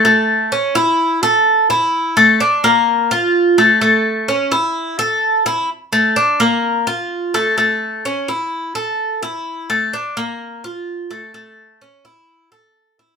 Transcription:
\new Staff \with { instrumentName = "Cuban tres" } { \time 4/4 \key d \minor \tempo 4 = 128 a4 cis'8 e'4 a'4 e'8~ | e'8 a8 d'8 bes4 f'4 a8 | a4 cis'8 e'4 a'4 e'8 | r8 a8 d'8 bes4 f'4 a8 |
a4 cis'8 e'4 a'4 e'8~ | e'8 a8 d'8 bes4 f'4 a8 | a4 cis'8 e'4 a'4 e'8 | }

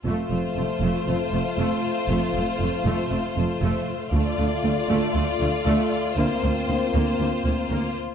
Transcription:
<<
  \new Staff \with { instrumentName = "Violin section" } { \time 4/4 \key f \major \tempo 4 = 118 c''1~ | c''1 | d''1 | c''2.~ c''8 r8 | }
  \new Staff \with { instrumentName = "Violin section" } { \time 4/4 \key f \major f'1~ | f'1 | f'1~ | f'2.~ f'8 r8 | }
  \new Staff \with { instrumentName = "French horn section" } { \time 4/4 \key f \major <a f'>1~ | <a f'>1 | <a f'>1 | <bes c'>2.~ <bes c'>8 r8 | }
  \new Staff \with { instrumentName = "Viola section" } { \time 4/4 \key f \major a8 a8 a8 a8 a8 a8 a8 r8 | a8 a8 a8 a8 a8 a8 a8 r8 | a8 a8 a8 a8 a8 a8 a8 r8 | bes8 bes8 bes8 bes8 bes8 bes8 bes8 r8 | }
  \new Staff \with { instrumentName = "Cello section" } { \clef bass \time 4/4 \key f \major f,8 f,8 f,8 f,8 f,8 f,8 f,8 r8 | f,8 f,8 f,8 f,8 f,8 f,8 f,8 r8 | d,8 d,8 d,8 d,8 d,8 d,8 d,8 r8 | d,8 d,8 d,8 d,8 d,8 d,8 d,8 r8 | }
  \new Staff \with { instrumentName = "Double bass section" } { \clef bass \time 4/4 \key f \major f,,8 f,,8 f,,8 f,,8 f,,8 f,,8 f,,8 r8 | f,,8 f,,8 f,,8 f,,8 f,,8 f,,8 f,,8 r8 | d,8 d,8 d,8 d,8 d,8 d,8 d,8 r8 | d,8 d,8 d,8 d,8 d,8 d,8 d,8 r8 | }
>>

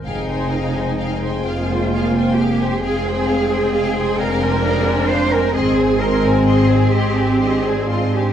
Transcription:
<<
  \new Staff \with { instrumentName = "Violin section" } { \time 6/8 \key f \dorian \tempo 4. = 43 g''16 aes''16 g''16 aes''16 g''16 aes''16 g''16 aes''16 g''16 aes''16 g''16 aes''16 | g''16 aes''16 g''16 aes''16 g''16 aes''16 g''16 aes''16 g''16 aes''16 g''16 aes''16 | c'''16 aes''16 c'''16 aes''16 c'''16 aes''16 c'''16 aes''16 c'''16 aes''16 c'''16 aes''16 | }
  \new Staff \with { instrumentName = "Violin section" } { \time 6/8 \key f \dorian <aes' f''>16 <c'' g''>16 <aes' f''>16 <c'' g''>16 <aes' f''>16 <c'' g''>16 <aes' f''>16 <c'' g''>16 <aes' f''>16 <c'' g''>16 <aes' f''>16 <c'' g''>16 | <aes' f''>16 <c'' g''>16 <aes' f''>16 <c'' g''>16 <aes' f''>16 <c'' g''>16 <aes' f''>16 <c'' g''>16 <aes' f''>16 <c'' g''>16 <aes' f''>16 <c'' g''>16 | <aes' ees''>16 c''16 <aes' ees''>16 c''16 <aes' ees''>16 c''16 <aes' ees''>16 c''16 <aes' ees''>16 c''16 <aes' ees''>16 c''16 | }
  \new Staff \with { instrumentName = "Cello section" } { \time 6/8 \key f \dorian ees'4. f'4 g'8 | aes'4. bes'4 c''16 bes'16 | aes'8 bes'8 aes'8 g'8. aes'16 f'16 g'16 | }
  \new Staff \with { instrumentName = "French horn section" } { \time 6/8 \key f \dorian << { c'2. | c'2. | c'2 d'4 | } \\ { aes2. | aes2. | aes2. | } >> }
  \new Staff \with { instrumentName = "Viola section" } { \time 6/8 \key f \dorian r4. bes4. | c'4. d'4. | c'2. | }
  \new Staff \with { instrumentName = "Double bass section" } { \clef bass \time 6/8 \key f \dorian f,,4. f,,4. | f,,4. f,,4. | aes,,4. aes,,4. | }
>>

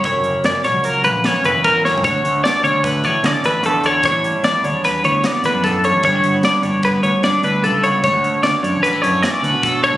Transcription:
<<
  \new Staff \with { instrumentName = "Clean electric guitar" } { \time 5/4 \key a \mixolydian \tempo 4 = 150 cis''4 d''8 cis''8 ais'8 b'8 cis''8 b'8 ais'8 cis''8 | cis''4 d''8 cis''8 b'8 cis''8 d''8 b'8 a'8 cis''8 | cis''4 d''8 cis''8 b'8 cis''8 d''8 b'8 a'8 cis''8 | cis''4 d''8 cis''8 b'8 cis''8 d''8 b'8 a'8 cis''8 |
cis''4 d''8 cis''8 b'8 cis''8 d''8 b'8 a'8 cis''8 | }
  \new Staff \with { instrumentName = "Clean electric guitar" } { \time 5/4 \key a \mixolydian << { e'8 ais8 cis'4 ais4 cis'8 e'8 e'8 ais8 | fis'8 a8 cis'4 a4 cis'8 a'8 g'8 a8 | d'8 g8 b2 b8 d'8 d'8 g8 | d'16 e'16 b8 d'4 b4 d'8 e'8 d'16 e'16 b8 |
fis'8 a8 cis'4 g16 a8. cis'8 fis'8 fis'8 a8 | } \\ { fis,4. fis4 cis4. fis,4 | d,4. d4 a,4. d,4 | a,4. d4 e,4. a,4 | g,1 g,4 |
d,4. d4 a,4. d,4 | } >> }
  \new Staff \with { instrumentName = "Picked electric bass" } { \clef bass \time 5/4 \key a \mixolydian fis,,16 fis,,8 r16 fis,,16 r16 ais,,16 cis,8. ais,,8 r8 fis,,16 e,4 fis,,16 | d,8 d,8 r8 d,16 d,8. a,,16 r16 d16 r16 a,,8 e,4 | a,,16 a,,8 r16 a,,16 r16 d,16 e,8. d,8 r8 a,,16 fis,4 a,,16 | g,,8 g,,8 r8 g,,16 g,,8. d,16 r16 g,16 r16 d,8 cis,4 |
d,16 d,8 r16 d,16 r16 fis,16 a,,8. fis,8 r8 d,16 b,4 d,16 | }
  \new DrumStaff \with { instrumentName = "Drums" } \drummode { \time 5/4 <hh bd>8 hh8 <hh sn>8 <hh sn>8 hh8 hh8 <hh sn>8 hh8 \tuplet 3/2 { <hh bd>16 r16 r16 sn16 r16 tomfh16 } | <hh bd>8 hh8 <hh sn>8 hh8 <hh bd>8 hh8 <hh sn>8 <hh sn>8 hh8 hh8 | <hh bd>8 hh8 <hh sn>8 hh8 <hh sn>8 hh8 <hh sn>8 hh8 <hh bd>8 hh8 | <hh bd>8 hh8 <hh sn>8 hh8 <hh bd>8 hh8 <hh sn>8 hh8 hh8 hh8 |
<hh bd>8 hh8 <hh sn>8 hh8 hh8 hh8 <hh sn>8 hh8 <hh bd>8 hh8 | }
>>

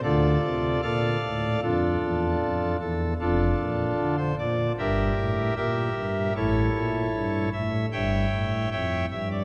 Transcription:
<<
  \new Staff \with { instrumentName = "Pipe organ" } { \time 4/4 \key d \minor \tempo 4 = 76 <f' a' d''>4 <a' d'' f''>4 <d' f' a'>4. a'8 | <d' f' a'>4~ <d' f' a'>16 c''16 d''8 <g' bes' e''>4 <g' bes' e''>4 | <e' a' cis''>4. e''8 <cis'' e'' g''>4 <cis'' e'' g''>8 e''16 d''16 | }
  \new Staff \with { instrumentName = "Pipe organ" } { \clef bass \time 4/4 \key d \minor <d, d>8 c8 bes,8 a,8 f,8 e,8 f,8 e,8 | <f,, f,>8 bes,8 d8 bes,8 <g,, g,>8 a,8 bes,8 g,8 | <a,, a,>8 bes,8 g,8 a,8 <g,, g,>8 a,8 f,8 g,8 | }
>>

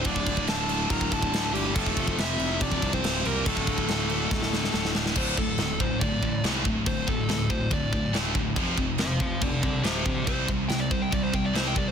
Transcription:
<<
  \new Staff \with { instrumentName = "Lead electric guitar" } { \time 4/4 \key d \minor \tempo 4 = 141 d''4 a''4 bes''8 a''4 g'8 | a'4 e''4 d''8. c''8. bes'8 | a'2.~ a'8 r8 | c''8 a'4 c''8 d''4 r4 |
c''8 a'4 c''8 d''4 r4 | r4 <c'' f''>8 <c'' f''>8 <a' d''>8 <a' d''>8 <g' c''>8 <g' c''>8 | c''8 r8 g''16 d''16 c''16 g''16 d''16 c''16 g''16 d''16 c''16 g''16 d''16 c''16 | }
  \new Staff \with { instrumentName = "Lead electric guitar" } { \time 4/4 \key d \minor d'4 a'4 bes'8 a'4 g8 | a4 e'4 d'8. c'8. bes8 | a2.~ a8 r8 | r1 |
r1 | r1 | r1 | }
  \new Staff \with { instrumentName = "Distorted electric guitar" } { \clef bass \time 4/4 \key d \minor <d, a, d>1 | <f, c f>1 | <d, a, d>1 | <d, a, d>8 <d, a,>8 <d, a,>8 <d, a,>8 <d, a,>8 <d, a,>8 <d, a, d>8 <d, a,>8 |
<d, a,>8 <d, a,>8 <d, a,>8 <d, a,>8 <d, a,>8 <d, a,>8 <d, a, d>8 <d, a,>8 | <f, c f>8 <f, c>8 <f, c>8 <f, c>8 <f, c>8 <f, c>8 <f, c f>8 <f, c>8 | <c g c'>8 <c g>8 <c g>8 <c g>8 <c g>8 <c g>8 <c g c'>8 <c g>8 | }
  \new Staff \with { instrumentName = "Picked electric bass" } { \clef bass \time 4/4 \key d \minor d,,8 d,,8 d,,4 d,,4 d,,8 g,,8 | f,,8 f,,8 f,,8 f,,8 f,,8 c,8 d,,8 c,8 | d,,8 d,,8 d,,4 d,,4 d,,8 d,,8 | d,,8 d,,8 d,,8 d,,8 d,,8 a,,8 c,8 d,,8 |
d,,8 d,,8 d,,4 d,,4 d,,8 d,,8 | f,,8 f,,8 f,,8 f,,8 f,,8 c,8 d,,8 d,,8 | c,8 c,8 c,4 c,4 c,8 c,8 | }
  \new DrumStaff \with { instrumentName = "Drums" } \drummode { \time 4/4 <cymc bd>16 bd16 <cymc bd>16 bd16 <cymc sn>8 cymc8 <cymc bd>16 bd16 <cymc bd>16 bd16 <cymc sn>8 cymc8 | <cymc bd>16 bd16 <cymc bd>16 bd16 <cymc sn>8 cymc8 <cymc bd>16 bd16 <cymc bd>16 bd16 <cymc sn>8 cymc8 | <cymc bd>16 bd16 <cymc bd>16 bd16 <cymc sn>8 cymc8 <bd sn>16 sn16 sn16 sn16 sn16 sn16 sn16 sn16 | <cymc bd>8 bd8 <cymc sn>8 bd8 <cymc bd>8 bd8 <cymc sn>8 bd8 |
<cymc bd>8 bd8 <cymc sn>8 bd8 <cymc bd>8 bd8 <cymc sn>8 bd8 | <cymc bd>8 bd8 <cymc sn>8 bd8 <cymc bd>8 bd8 <cymc sn>8 bd8 | <cymc bd>8 bd8 <cymc sn>8 bd8 <cymc bd>8 bd8 <cymc sn>8 bd8 | }
>>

